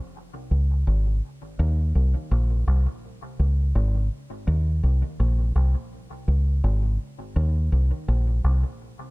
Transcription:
fingered electric bass
0.51 C#2
0.87 G#1
1.59 D#2
1.95 C2
2.31 A#1
2.67 C2
3.39 C#2
3.75 G#1
4.47 D#2
4.83 C2
5.20 A#1
5.56 C2
6.28 C#2
6.64 G#1
7.36 D#2
7.72 C2
8.08 A#1
8.44 C2

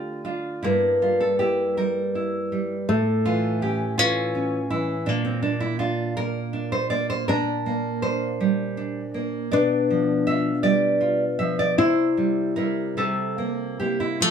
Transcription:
nylon-string guitar
Already playing: D3 A3 D4 F4 G4
0.25 D4 F4
0.63 G2 A#3 E4
1.02 G3 F4
1.20 A4
1.39 E4 G4
1.77 G3 A#4
2.15 E4
2.52 G3
2.89 A2 A3
3.25 E3 F4
3.62 C#4 G4
3.98 E3 C#4 F4
4.35 C#4
4.70 E3 E4
5.06 A#2 A#3 D4
5.25 C4
5.42 A#3 D4
5.60 E4
5.79 D4 F4
6.17 A#3 A#4
6.53 D4
6.72 C5
6.90 A#3 D5
7.10 C5
7.28 A#2 D4 A#4
7.66 A#3
8.02 D4 C5
8.40 G3
8.77 D4
9.14 A#3
9.51 B2 D4 D5
9.90 F3
10.27 F4 E5
10.63 G3 D5
11.01 F4
11.39 F3 E5
11.59 D5
11.78 C3 E4 C5
12.17 G3
12.56 G3 E4 A#4
12.97 C3 G3 A4
13.38 A#3
13.80 A#3 E4 G4
14.00 E4
14.20 F3 A3 F4

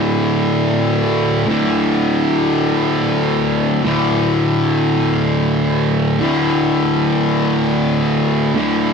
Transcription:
distorted electric guitar
Already playing: D2 A2 D3
1.46 D2 A2 D3
3.83 D2 A2 D3
6.19 D2 A2 D3
8.55 D2 A2 D3

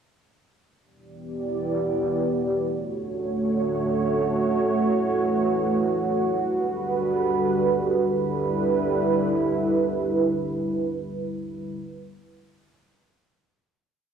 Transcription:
analog synth pad
0.83 E3 B3 G4 D5
2.65 D3 A3 F#4 C#5
4.47 E3
6.29 D3 G3 B4
8.10 D3 G3 E4 B4

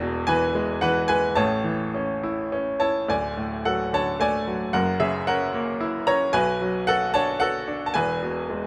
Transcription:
grand piano
Already playing: E1 E2
0.02 B2
0.27 E3 B4 G#5
0.55 G#3
0.81 E3 B4 F#5
1.08 G#3 B4 G#5
1.35 A1 A2 C#5 A5
1.64 E3
1.94 C#4
2.23 E4
2.52 C#4
2.80 E4 C#5 A5
3.08 D1 D2 D5 G#5
3.37 A2
3.65 F#3 A4 F#5
3.93 D3 C#5 A5
4.20 A3 D5 G#5
4.47 F#3
4.73 F#1 F#2 A#4 F#5
5.00 C#3 G#4 E5
5.27 C#4 A#4 F#5
5.54 A#3
5.81 E4
6.07 C#4 C#5 A#5
6.33 B1 B2 B4 G#5
6.61 F#3
6.87 F#4 A4 F#5
7.14 D4 C#5 A5
7.40 F#4 A4 F#5
7.68 D4
7.86 A5
7.94 E1 E2 B4 G#5
8.22 B2
8.50 G#3

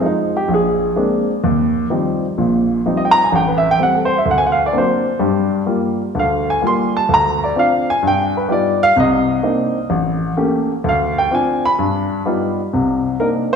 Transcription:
grand piano
0.01 F3 G#3 D#4
0.06 D#4
0.37 G4
0.48 A#1
0.54 G#4
0.96 G#3 A#3 C4 D4
1.44 D#2
1.90 F3 G3 C4 D#4
2.38 A#1 A#2
2.86 F3 G3 C4 D#4
2.97 D#5
3.05 G5
3.11 A#5
3.24 G#5
3.32 A1 G5
3.48 B4
3.58 E5
3.71 G5
3.79 G3 A3 C4
3.83 F#5
3.95 A4
4.05 C5
4.18 E5
4.26 D2
4.31 F#5
4.38 G#5
4.47 F#5
4.52 F5
4.66 D5
4.73 F#3 A#3 C4 D4
4.78 C5
5.19 G2 G3
5.66 G3 A#3 F4
6.15 D2 D3
6.19 F5
6.50 G#5
6.62 G3 A#3 F4
6.67 C6
6.97 A5
7.09 D2
7.14 A#5
7.44 D5
7.56 C4 D4 F4 F5
7.90 G#5
8.03 G2
8.07 G5
8.37 B4
8.49 G3 B3 D#4 F4 D5
8.83 F5
8.96 C2 C3 D#5
9.43 A#3 C4 D4 D#4
9.90 A1
10.37 A3 A#3 C#4 G4
10.84 D2
10.89 F5
11.18 G5
11.31 C4 D4 F4 G#5
11.66 B5
11.79 G2
12.26 G3 B3 D#4 F4
12.73 C2 C3
13.20 A#3 C4 D4 D#4 A#4

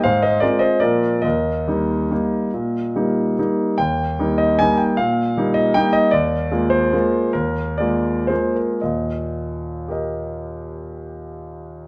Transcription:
grand piano
0.04 G#2 C5 F5
0.23 C5 D#5
0.40 G#3 C4 F4 A#4 D5
0.59 C5 D#5
0.80 A#2 F3 A#3 F4 A#4 D5
1.22 D#2 A#4 D#5
1.68 G3 A#3 D#4
2.11 G3 A#3 D#4
2.54 A#2
2.96 G3 A#3 D#4
3.39 G3 A#3 D#4
3.78 D#2 G5
4.19 G3 A#3 D#4
4.38 D#5
4.59 G3 A#3 D#4 G#5
4.77 G5
4.97 A#2 F5
5.37 G3 A#3 D#4
5.54 D#5
5.74 G3 A#3 D#4 G5
5.93 D#5
6.11 D#2 D5
6.51 G#3 A#3 F4
6.70 C5
6.93 G#3 A#3 F4
7.33 D#2 A#4
7.78 G#3 A#3 F4 D5
8.27 G#3 A#3 F4 C5
8.55 A#4
8.82 D#2 A#2 D#5
9.88 G4 A#4 D#5

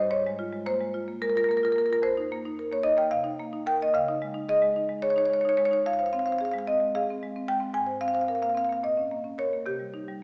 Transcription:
marimba
Already playing: G3
0.00 C5
0.10 G#2 C#5
0.27 G#3
0.39 F4
0.53 G#3
0.66 A#3 C5
0.81 G#3
0.94 F4
1.08 A#3
1.22 G#3 A#4
1.30 A#4
1.35 F4 A#4
1.44 A#4
1.49 A#3 A#4
1.57 A#4
1.63 F4 A#4
1.72 A#3 A#4
1.78 A#4
1.86 A#4
1.90 F4 A#4
2.02 F2 C5
2.17 D#4
2.32 A#3
2.45 D#4
2.59 A#4
2.72 A#3 C#5
2.83 D#4 D#5
2.97 A#3 G5
3.11 C3 F5
3.24 D#4
3.40 A#3
3.53 D#4
3.66 A#4 G5
3.82 A#3 D#5
3.94 C#3 F5
4.08 D#4
4.22 G#3
4.34 D#4
4.49 G#4 D#5
4.62 G#3
4.76 D#4
4.89 G#3
5.02 G#4 C#5
5.10 C#5
5.16 D#4 C#5
5.25 C#5
5.30 G#3 C#5
5.41 D#4 C#5
5.49 C#5
5.57 G#3 C#5
5.65 C#5
5.71 D#4 C#5
5.86 F2 F5
5.93 F5
5.99 C5 F5
6.06 F5
6.13 C4 F5
6.19 F5
6.26 C5 F5
6.32 F5
6.38 G#4 F5
6.45 F5
6.51 G#3 F5
6.59 F5
6.67 C4 D#5
6.80 G#3
6.95 G#4 F5
7.11 C4
7.23 G#3
7.36 C4
7.48 G#3 G5
7.60 C4
7.74 G#2 G#5
7.87 C5
8.01 C4 F5
8.08 F5
8.14 C5 F5
8.21 F5
8.28 A#4 F5
8.35 F5
8.42 A#3 F5
8.49 F5
8.55 C4 F5
8.65 F5
8.69 A#3 F5
8.83 A#2 D#5
8.97 C#4
9.12 A#3
9.24 C#4
9.38 A#4 C#5
9.53 A#3
9.66 C3 G4
9.79 G3
9.94 D#4
10.08 G3

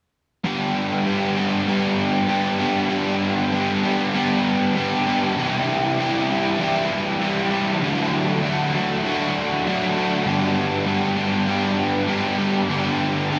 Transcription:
overdriven electric guitar
0.44 G2 D3 G3 B3 D4 G4
1.05 G3 B3 D4 G4
1.37 G3 B3 D4 G4
1.67 G3 B3 D4 G4
2.27 G3 B3 D4 G4
2.59 G3 B3 D4 G4
2.89 G2 D3 G3 B3 D4 G4
3.52 G3 B3 D4 G4
3.83 G3 B3 D4 G4
4.14 G3 B3 D4 G4
4.75 G3 B3 D4 G4
5.07 G3 B3 D4 G4
5.36 C3 E3 G3 E4 G4
5.98 E3 G3 E4 G4
6.30 G3 E4 G4
6.58 E3 G3 E4 G4
7.20 E3 G3 E4 G4
7.50 G3 E4 G4
7.81 D3 F#3 A3 D4 F#4
8.42 F#3 A3 D4 F#4
8.74 A3 D4 F#4
9.04 F#3 A3 D4 F#4
9.66 F#3 A3 D4 F#4
9.96 A3 D4 F#4
10.25 G2 D3 G3 B3 D4 G4
10.86 G3 B3 D4 G4
11.16 G3 B3 D4 G4
11.47 G3 B3 D4 G4
12.07 G3 B3 D4 G4
12.37 G3 B3 D4 G4
12.68 G2 D3 G3 B3 D4 G4
13.31 G3 B3 D4 G4

